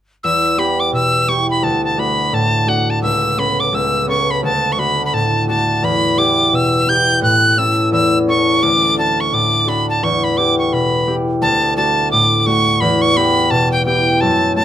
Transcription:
0.24 harp E2, tin whistle E6
0.57 harp B3 E4 G4, tin whistle B5
0.80 tin whistle D6
0.92 harp B2, tin whistle E6
1.28 harp B3 E4 G4, tin whistle C#6
1.51 tin whistle B5
1.62 harp D2, tin whistle A5
1.85 tin whistle A5
1.97 harp A3 D4 F#4, tin whistle B5
2.33 harp A2, tin whistle A5
2.67 harp A3 D4 F#4, tin whistle F#5
2.90 tin whistle A5
3.02 harp C#2, tin whistle E6
3.37 harp B3 C#4 A4, tin whistle B5
3.60 tin whistle D6
3.73 harp C#2, tin whistle E6
4.06 harp B3 C#4 A4, tin whistle C#6
4.31 tin whistle B5
4.43 harp D2, tin whistle A5
4.72 tin whistle C#6
4.77 harp A3 D4 F#4, tin whistle B5
5.06 tin whistle B5
5.13 harp A2, tin whistle A5
5.48 harp A3 D4 F#4, tin whistle A5
5.82 harp E2, tin whistle B5
6.17 harp B3 E4 G4, tin whistle D6
6.53 harp B2, tin whistle E6
6.86 harp B3 E4 G4, tin whistle G6
7.21 harp A2, tin whistle F#6
7.57 harp C#4 E4 A4, tin whistle E6
7.92 harp E2, tin whistle E6
8.27 harp C#4 E4 A4, tin whistle C#6
8.62 harp D2, tin whistle D6
8.97 harp D4 F#4 A4, tin whistle A5
9.20 tin whistle C#6
9.33 harp A2, tin whistle D6
9.67 harp D4 F#4 A4, tin whistle B5
9.90 tin whistle A5
10.03 harp E2, tin whistle C#6
10.24 tin whistle B5
10.37 harp B3 E4 G4, tin whistle D6
10.59 tin whistle C#6
10.72 harp B2, tin whistle B5
11.07 harp B3 E4 G4
11.41 harp D2, tin whistle A5
11.77 harp A3 D4 F#4, tin whistle A5
12.11 harp A2, tin whistle D6
12.40 tin whistle D6
12.46 harp A3 D4 F#4, tin whistle C#6
12.81 harp E2, tin whistle B5
13.02 tin whistle C#6
13.16 harp B3 E4 G4, tin whistle B5
13.51 harp B2, tin whistle A5
13.72 tin whistle G5
13.85 harp B3 E4 G4, tin whistle G5
14.21 harp F#2, tin whistle A5
14.56 harp A3 C#4 F#4, tin whistle A5

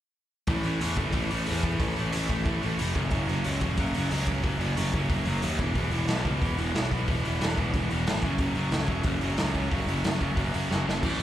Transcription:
0.47 picked electric bass A1, distorted electric guitar A2 E3 A3, kick, open hi-hat
0.63 picked electric bass A1, distorted electric guitar A2 E3 A3, open hi-hat
0.81 picked electric bass E2, distorted electric guitar A2 E3 A3, open hi-hat
0.96 picked electric bass F#1, distorted electric guitar A2 E3 A3, kick, open hi-hat
1.12 picked electric bass A1, distorted electric guitar A2 E3 A3, kick, open hi-hat
1.30 picked electric bass A1, distorted electric guitar A2 E3 A3, open hi-hat
1.46 picked electric bass E2, distorted electric guitar A2 E3 A3, open hi-hat
1.63 distorted electric guitar A2 E3 A3, kick, open hi-hat
1.80 picked electric bass A1, distorted electric guitar A2 E3 A3, kick, open hi-hat
1.95 distorted electric guitar A2 E3 A3, open hi-hat
1.99 picked electric bass A1
2.12 distorted electric guitar A2 E3 A3, open hi-hat
2.16 picked electric bass A1
2.27 picked electric bass A1, distorted electric guitar A2 E3 A3, kick, open hi-hat
2.45 picked electric bass A1, distorted electric guitar A2 E3 A3, kick, open hi-hat
2.62 picked electric bass A1, distorted electric guitar A2 E3 A3, open hi-hat
2.79 picked electric bass F1, distorted electric guitar A2 E3 A3, open hi-hat
2.94 picked electric bass F#1, distorted electric guitar F#2 C#3 F#3, kick, open hi-hat
3.10 picked electric bass F#1, distorted electric guitar F#2 C#3 F#3, kick, open hi-hat
3.27 picked electric bass F#1, distorted electric guitar F#2 C#3 F#3, open hi-hat
3.44 picked electric bass C#2, distorted electric guitar F#2 C#3 F#3, open hi-hat
3.61 picked electric bass E1, distorted electric guitar F#2 C#3 F#3, kick, open hi-hat
3.77 picked electric bass F#1, distorted electric guitar F#2 C#3 F#3, kick, open hi-hat
3.94 picked electric bass F#1, distorted electric guitar F#2 C#3 F#3, open hi-hat
4.11 picked electric bass C#2, distorted electric guitar F#2 C#3 F#3, open hi-hat
4.26 distorted electric guitar F#2 C#3 F#3, kick, open hi-hat
4.43 picked electric bass F#1, distorted electric guitar F#2 C#3 F#3, kick, open hi-hat
4.59 picked electric bass F#1, distorted electric guitar F#2 C#3 F#3, open hi-hat
4.76 picked electric bass F#1, distorted electric guitar F#2 C#3 F#3, open hi-hat
4.93 picked electric bass F#1, distorted electric guitar F#2 C#3 F#3, kick, open hi-hat
5.09 picked electric bass F#1, distorted electric guitar F#2 C#3 F#3, kick, open hi-hat
5.25 picked electric bass F#1, distorted electric guitar F#2 C#3 F#3, open hi-hat
5.42 picked electric bass D#2, distorted electric guitar F#2 C#3 F#3, open hi-hat
5.59 picked electric bass E1, distorted electric guitar E2 B2 E3, kick, open hi-hat
5.75 picked electric bass E1, distorted electric guitar E2 B2 E3, kick, open hi-hat
5.91 picked electric bass E1, distorted electric guitar E2 B2 E3, open hi-hat
6.08 picked electric bass B1, distorted electric guitar E2 B2 E3, snare, open hi-hat
6.24 picked electric bass C#2, distorted electric guitar E2 B2 E3, kick, open hi-hat
6.42 picked electric bass E1, distorted electric guitar E2 B2 E3, kick, open hi-hat
6.57 picked electric bass E1, distorted electric guitar E2 B2 E3, open hi-hat
6.74 picked electric bass B1, distorted electric guitar E2 B2 E3, snare, open hi-hat
6.91 distorted electric guitar E2 B2 E3, kick, open hi-hat
7.08 picked electric bass E1, distorted electric guitar E2 B2 E3, kick, open hi-hat
7.24 picked electric bass E1, distorted electric guitar E2 B2 E3, open hi-hat
7.41 picked electric bass E1, distorted electric guitar E2 B2 E3, snare, open hi-hat
7.57 picked electric bass E1, distorted electric guitar E2 B2 E3, kick, open hi-hat
7.74 picked electric bass E1, distorted electric guitar E2 B2 E3, kick, open hi-hat
7.90 picked electric bass E1, distorted electric guitar E2 B2 E3, open hi-hat
8.07 picked electric bass G#1, distorted electric guitar E2 B2 E3, snare, open hi-hat
8.22 picked electric bass F#1, distorted electric guitar F#2 C#3 F#3, kick, open hi-hat
8.38 picked electric bass F#1, distorted electric guitar F#2 C#3 F#3, kick, open hi-hat
8.55 picked electric bass F#1, distorted electric guitar F#2 C#3 F#3, open hi-hat
8.71 picked electric bass C#2, distorted electric guitar F#2 C#3 F#3, snare, open hi-hat
8.86 picked electric bass E1, distorted electric guitar F#2 C#3 F#3, kick, open hi-hat
9.03 picked electric bass F#1, distorted electric guitar F#2 C#3 F#3, kick, open hi-hat
9.21 picked electric bass F#1, distorted electric guitar F#2 C#3 F#3, open hi-hat
9.37 picked electric bass C#2, distorted electric guitar F#2 C#3 F#3, snare, open hi-hat
9.55 distorted electric guitar F#2 C#3 F#3, kick, open hi-hat
9.70 picked electric bass F#1, distorted electric guitar F#2 C#3 F#3, kick, open hi-hat
9.87 picked electric bass F#1, distorted electric guitar F#2 C#3 F#3, open hi-hat
10.03 picked electric bass F#1, distorted electric guitar F#2 C#3 F#3, snare, open hi-hat
10.21 picked electric bass F#1, distorted electric guitar F#2 C#3 F#3, kick, open hi-hat
10.36 picked electric bass F#1, distorted electric guitar F#2 C#3 F#3, kick, open hi-hat
10.54 picked electric bass F#1, distorted electric guitar F#2 C#3 F#3, open hi-hat
10.69 picked electric bass F#1, distorted electric guitar F#2 C#3 F#3, snare
10.87 picked electric bass F#1, distorted electric guitar F#2 C#3 F#3, snare
11.03 picked electric bass A1, distorted electric guitar A2 E3 A3, kick, crash
11.19 picked electric bass A1

